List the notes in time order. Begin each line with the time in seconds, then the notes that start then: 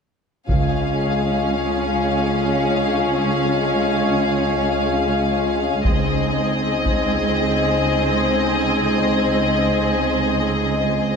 0.49 C#2 G#3 C#4 F4 G#4 F5, taiko
5.85 C#2 G#3 C4 D#4 G#4 D#5, taiko
6.86 taiko